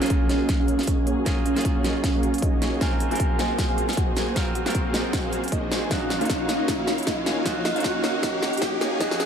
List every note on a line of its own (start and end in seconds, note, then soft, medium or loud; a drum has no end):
0.00 1.23 F#3 medium
0.00 5.87 A#3 medium
0.00 1.24 A#3 medium
0.00 0.28 A#3 medium
0.00 0.20 C#4 medium
0.00 5.87 F4 medium
0.00 1.24 F4 medium
0.00 0.28 F#4 medium
0.00 2.78 G#4 medium
0.00 0.28 G#4 medium
0.00 1.25 G#4 medium
0.00 0.20 C#5 medium
0.00 0.28 C#5 medium
0.00 0.28 F5 medium
0.00 snare soft
0.00 closed hi-hat soft
0.00 riser medium
0.06 closed hi-hat medium
0.10 kick medium
0.10 closed hi-hat medium
0.29 0.57 A#3 medium
0.29 0.48 C#4 medium
0.29 0.57 F#4 medium
0.29 0.57 G#4 medium
0.29 0.48 C#5 medium
0.29 0.57 C#5 medium
0.29 0.57 D#5 medium
0.29 snare soft
0.29 closed hi-hat medium
0.49 kick medium
0.49 snare soft
0.49 closed hi-hat medium
0.60 0.75 A#3 medium
0.60 0.78 C#4 medium
0.60 0.75 F#4 medium
0.60 0.75 G#4 medium
0.60 0.78 C#5 medium
0.60 0.75 C#5 medium
0.60 0.75 F5 medium
0.68 closed hi-hat medium
0.79 snare soft
0.79 closed hi-hat soft
0.83 closed hi-hat medium
0.87 0.99 A#3 medium
0.87 1.06 C#4 medium
0.87 0.99 F#4 medium
0.87 0.99 G#4 medium
0.87 1.06 C#5 medium
0.87 0.99 C#5 medium
0.87 0.99 D#5 medium
0.87 kick medium
0.87 closed hi-hat medium
1.07 1.24 A#3 medium
1.07 1.24 F#4 medium
1.07 1.24 G#4 medium
1.07 1.24 C#5 medium
1.07 1.24 G#5 loud
1.07 closed hi-hat medium
1.25 1.53 F#3 medium
1.25 1.54 A#3 medium
1.25 1.37 A#3 medium
1.25 1.54 F4 medium
1.25 1.37 F#4 medium
1.25 1.37 G#4 medium
1.25 1.54 G#4 medium
1.25 1.37 C#5 medium
1.25 1.37 F5 medium
1.25 kick medium
1.25 snare medium
1.25 closed hi-hat medium
1.46 1.64 C#4 medium
1.46 1.64 C#5 medium
1.46 closed hi-hat medium
1.54 2.78 F#3 medium
1.54 2.79 A#3 medium
1.54 1.82 A#3 medium
1.54 2.79 F4 medium
1.54 1.82 F#4 medium
1.54 1.82 G#4 medium
1.54 1.82 C#5 medium
1.54 1.82 F5 medium
1.54 snare soft
1.54 closed hi-hat medium
1.58 2.80 G#4 medium
1.58 closed hi-hat medium
1.65 kick medium
1.65 closed hi-hat medium
1.84 2.12 A#3 medium
1.84 2.12 F#4 medium
1.84 2.12 G#4 medium
1.84 2.12 C#5 medium
1.84 2.12 D#5 medium
1.84 snare medium
1.84 closed hi-hat medium
2.04 2.29 C#4 medium
2.04 2.29 C#5 medium
2.04 kick medium
2.04 snare medium
2.04 closed hi-hat medium
2.15 2.30 A#3 medium
2.15 2.30 F#4 medium
2.15 2.30 G#4 medium
2.15 2.30 C#5 medium
2.15 2.30 F5 medium
2.23 closed hi-hat medium
2.34 closed hi-hat medium
2.38 closed hi-hat medium
2.42 2.54 A#3 medium
2.42 2.56 D#4 medium
2.42 2.54 F#4 medium
2.42 2.54 G#4 medium
2.42 2.54 C#5 medium
2.42 2.54 D#5 medium
2.42 2.56 D#5 medium
2.42 kick medium
2.42 closed hi-hat medium
2.62 2.79 A#3 medium
2.62 2.79 F#4 medium
2.62 2.79 G#4 medium
2.62 2.79 C#5 medium
2.62 2.79 G#5 loud
2.62 snare medium
2.62 closed hi-hat medium
2.80 3.08 F#3 medium
2.80 2.92 A#3 medium
2.80 3.09 C4 medium
2.80 5.88 C4 medium
2.80 3.09 F4 medium
2.80 2.92 F#4 medium
2.80 5.88 G#4 medium
2.80 2.92 G#4 medium
2.80 3.00 G#4 medium
2.80 3.09 A#4 medium
2.80 3.00 G#5 loud
2.80 kick medium
2.80 snare medium
2.80 closed hi-hat medium
3.00 closed hi-hat medium
3.09 4.33 F#3 medium
3.09 3.37 A#3 medium
3.09 4.34 C4 medium
3.09 4.34 F4 medium
3.09 3.37 F#4 medium
3.09 3.30 G#4 medium
3.09 3.37 G#4 medium
3.09 3.37 C5 medium
3.09 3.37 F5 medium
3.09 3.30 G#5 medium
3.09 closed hi-hat soft
3.13 4.35 A#4 loud
3.13 closed hi-hat medium
3.20 kick medium
3.20 closed hi-hat medium
3.39 3.67 A#3 medium
3.39 3.67 F#4 medium
3.39 3.67 G#4 medium
3.39 3.58 G#4 medium
3.39 3.67 C5 medium
3.39 3.67 D#5 loud
3.39 3.58 G#5 medium
3.39 snare medium
3.39 closed hi-hat medium
3.59 kick medium
3.59 snare medium
3.59 closed hi-hat medium
3.69 3.85 A#3 medium
3.69 3.85 F#4 medium
3.69 3.88 G#4 medium
3.69 3.85 G#4 medium
3.69 3.85 C5 medium
3.69 3.85 F5 medium
3.69 3.88 G#5 medium
3.78 closed hi-hat medium
3.89 snare medium
3.89 closed hi-hat soft
3.93 closed hi-hat medium
3.97 4.08 A#3 medium
3.97 4.08 F#4 medium
3.97 4.16 F#4 medium
3.97 4.08 G#4 medium
3.97 4.08 C5 medium
3.97 4.08 D#5 medium
3.97 4.16 F#5 medium
3.97 kick medium
3.97 closed hi-hat medium
4.17 4.34 A#3 medium
4.17 4.34 F#4 medium
4.17 4.34 G#4 medium
4.17 4.34 C5 medium
4.17 4.34 G#5 loud
4.17 snare medium
4.17 closed hi-hat medium
4.35 4.63 F#3 medium
4.35 4.47 A#3 medium
4.35 4.63 C4 medium
4.35 4.64 F4 medium
4.35 4.47 F#4 medium
4.35 4.47 G#4 medium
4.35 4.64 A#4 medium
4.35 4.47 C5 medium
4.35 4.47 F5 medium
4.35 kick medium
4.35 snare medium
4.35 closed hi-hat medium
4.55 4.74 F#4 medium
4.55 4.74 F#5 loud
4.55 closed hi-hat medium
4.64 5.88 F#3 medium
4.64 4.92 A#3 medium
4.64 5.88 C4 medium
4.64 5.89 F4 medium
4.64 4.92 F#4 medium
4.64 4.92 G#4 medium
4.64 4.92 C5 medium
4.64 4.92 F5 medium
4.64 snare medium
4.64 closed hi-hat soft
4.68 5.90 A#4 loud
4.68 closed hi-hat medium
4.75 kick medium
4.75 closed hi-hat medium
4.94 5.22 A#3 medium
4.94 5.22 F#4 medium
4.94 5.22 G#4 medium
4.94 5.22 C5 medium
4.94 5.22 D#5 loud
4.94 snare medium
4.94 closed hi-hat medium
5.13 5.39 F#4 medium
5.13 5.39 F#5 medium
5.13 kick medium
5.13 snare medium
5.13 closed hi-hat medium
5.24 5.40 A#3 medium
5.24 5.40 F#4 medium
5.24 5.40 G#4 medium
5.24 5.40 C5 medium
5.24 5.40 F5 medium
5.33 closed hi-hat medium
5.44 closed hi-hat soft
5.48 closed hi-hat medium
5.52 5.63 A#3 medium
5.52 5.65 D#4 medium
5.52 5.63 F#4 medium
5.52 5.63 G#4 medium
5.52 5.63 C5 medium
5.52 5.65 D#5 medium
5.52 5.63 D#5 medium
5.52 kick medium
5.52 closed hi-hat medium
5.72 5.89 A#3 medium
5.72 5.89 F#4 medium
5.72 5.89 G#4 medium
5.72 5.89 C5 medium
5.72 5.89 G#5 loud
5.72 snare medium
5.72 closed hi-hat medium
5.90 9.26 D#3 medium
5.90 6.18 F3 medium
5.90 6.02 A#3 medium
5.90 6.18 C#4 medium
5.90 9.26 C#4 medium
5.90 6.18 D#4 medium
5.90 6.02 D#4 medium
5.90 6.10 F4 medium
5.90 6.19 F#4 medium
5.90 6.02 C#5 medium
5.90 9.26 F5 medium
5.90 6.10 F5 medium
5.90 6.02 F5 medium
5.90 kick medium
5.90 snare medium
5.90 closed hi-hat medium
6.10 snare medium
6.10 closed hi-hat medium
6.19 6.47 A#3 medium
6.19 7.43 C#4 medium
6.19 6.47 D#4 medium
6.19 7.44 D#4 medium
6.19 7.42 F4 medium
6.19 6.40 F4 medium
6.19 6.47 F#4 medium
6.19 6.47 C#5 medium
6.19 6.47 F5 medium
6.19 6.40 F5 medium
6.19 closed hi-hat soft
6.23 7.45 F#4 loud
6.23 closed hi-hat medium
6.30 kick medium
6.30 snare medium
6.30 closed hi-hat medium
6.49 6.76 A#3 medium
6.49 6.76 D#4 medium
6.49 6.68 F4 medium
6.49 6.76 F#4 medium
6.49 6.76 C#5 medium
6.49 6.77 D#5 loud
6.49 6.68 F5 medium
6.49 snare medium
6.49 closed hi-hat medium
6.68 kick loud
6.68 snare medium
6.68 closed hi-hat medium
6.79 6.94 A#3 medium
6.79 6.94 D#4 medium
6.79 6.98 F4 medium
6.79 6.94 F#4 medium
6.79 6.94 C#5 medium
6.79 6.94 F5 medium
6.79 6.98 F5 medium
6.87 snare medium
6.87 closed hi-hat medium
6.98 closed hi-hat soft
7.03 closed hi-hat medium
7.07 7.18 A#3 medium
7.07 7.18 D#4 medium
7.07 7.26 D#4 medium
7.07 7.18 F#4 medium
7.07 7.18 C#5 medium
7.07 7.18 D#5 medium
7.07 7.26 D#5 loud
7.07 kick medium
7.07 snare medium
7.07 closed hi-hat medium
7.26 7.44 A#3 medium
7.26 7.44 D#4 medium
7.26 7.44 F#4 medium
7.26 7.44 C#5 medium
7.26 7.44 G#5 loud
7.26 snare medium
7.26 closed hi-hat medium
7.45 7.73 F3 medium
7.45 7.57 A#3 medium
7.45 7.73 C#4 medium
7.45 7.57 D#4 medium
7.45 7.73 D#4 medium
7.45 7.57 F#4 medium
7.45 7.74 F#4 medium
7.45 7.57 C#5 medium
7.45 7.57 F5 medium
7.45 kick medium
7.45 snare medium
7.45 closed hi-hat medium
7.65 7.84 D#4 medium
7.65 7.84 D#5 loud
7.65 snare medium
7.65 closed hi-hat medium
7.74 8.02 A#3 medium
7.74 8.98 C#4 medium
7.74 8.02 D#4 medium
7.74 8.99 D#4 medium
7.74 8.97 F4 medium
7.74 8.02 F#4 medium
7.74 8.02 C#5 medium
7.74 8.02 F5 medium
7.74 closed hi-hat soft
7.78 8.99 F#4 loud
7.78 closed hi-hat medium
7.84 kick loud
7.84 snare medium
7.84 closed hi-hat medium
8.04 8.31 A#3 medium
8.04 8.31 D#4 medium
8.04 8.31 F#4 medium
8.04 8.31 C#5 medium
8.04 8.31 D#5 loud
8.04 snare medium
8.04 closed hi-hat medium
8.23 8.48 D#4 medium
8.23 8.48 D#5 medium
8.23 kick medium
8.23 snare medium
8.23 closed hi-hat medium
8.34 8.49 A#3 medium
8.34 8.49 D#4 medium
8.34 8.49 F#4 medium
8.34 8.49 C#5 medium
8.34 8.49 F5 medium
8.42 snare medium
8.42 closed hi-hat medium
8.53 closed hi-hat soft
8.57 closed hi-hat medium
8.62 8.73 A#3 medium
8.62 8.73 D#4 medium
8.62 8.75 F#4 medium
8.62 8.73 F#4 medium
8.62 8.73 C#5 medium
8.62 8.73 D#5 medium
8.62 8.75 F#5 medium
8.62 kick medium
8.62 snare medium
8.62 closed hi-hat medium
8.81 8.98 A#3 medium
8.81 8.98 D#4 medium
8.81 8.98 F#4 medium
8.81 8.98 C#5 medium
8.81 8.98 G#5 loud
8.81 snare medium
8.81 closed hi-hat medium
9.00 9.26 F3 medium
9.00 9.12 A#3 medium
9.00 9.26 C#4 medium
9.00 9.19 D#4 medium
9.00 9.12 D#4 medium
9.00 9.26 D#4 medium
9.00 9.12 F#4 medium
9.00 9.26 F#4 medium
9.00 9.19 D#5 loud
9.00 9.12 F5 medium
9.00 kick medium
9.00 snare medium
9.00 closed hi-hat medium
9.11 snare medium
9.20 snare medium
9.20 closed hi-hat medium